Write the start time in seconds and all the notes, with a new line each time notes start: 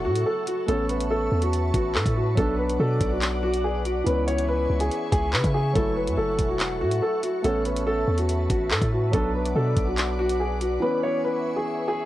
Already playing: F#3 A3 E4 A4 E5 F#5 C#6
0.05 A2 F#4
0.16 closed hi-hat
0.26 A4
0.47 F#4, closed hi-hat
0.66 A1 A3 B3 A4 B4 A5 C#6, closed hi-hat
0.71 C#4
0.89 B4, closed hi-hat
1.00 closed hi-hat
1.11 A4
1.32 E2
1.42 F#4, closed hi-hat
1.53 closed hi-hat
1.74 A1 F#4, kick, closed hi-hat
1.95 A2 A4, clap
2.06 A2, kick, closed hi-hat
2.16 F#4
2.35 B1 F#3 B3 A4 D5 F#5 D6, kick, closed hi-hat
2.40 D4
2.58 B4
2.69 closed hi-hat
2.80 B2 A4
3.01 B1, kick, closed hi-hat
3.11 F#4
3.22 clap, closed hi-hat
3.43 F#4
3.54 closed hi-hat
3.64 G#4
3.85 F#4, closed hi-hat
4.04 C#2 E3 B3 B4 E5 G#5 C#6, closed hi-hat
4.08 C#4
4.27 C#5, closed hi-hat
4.38 closed hi-hat
4.48 B4
4.70 C#2
4.80 G#4, closed hi-hat
4.91 closed hi-hat
5.12 C#2 G#4, kick, closed hi-hat
5.33 C#3 B4, clap
5.44 C#3, kick, closed hi-hat
5.54 G#4
5.73 F#1 F#3 A3 A4 F#5, kick, closed hi-hat
5.78 E4
5.96 B4
6.07 F#2, closed hi-hat
6.17 F#1 A4
6.39 E1, kick, closed hi-hat
6.49 F#4
6.60 clap, closed hi-hat
6.81 A2 F#4
6.92 closed hi-hat
7.02 A4
7.23 F#4, closed hi-hat
7.42 A1 A3 B3 A4 B4 A5, closed hi-hat
7.47 C#4
7.65 B4, closed hi-hat
7.77 closed hi-hat
7.87 A4
8.08 E2
8.18 F#4, closed hi-hat
8.29 closed hi-hat
8.50 A1 F#4, kick, closed hi-hat
8.71 A2 A4, clap
8.82 A2, kick, closed hi-hat
8.93 F#4
9.11 B1 F#3 B3 A4 D5 F#5 D6, kick, closed hi-hat
9.16 D4
9.35 B4
9.45 closed hi-hat
9.56 B2 A4
9.77 B1, kick, closed hi-hat
9.87 F#4
9.98 clap, closed hi-hat
10.19 F#4
10.29 closed hi-hat
10.40 G#4
10.61 F#4, closed hi-hat
10.80 E3 B3 B4 E5 G#5 C#6
10.85 C#4
11.03 C#5
11.24 B4
11.56 G#4
11.88 G#4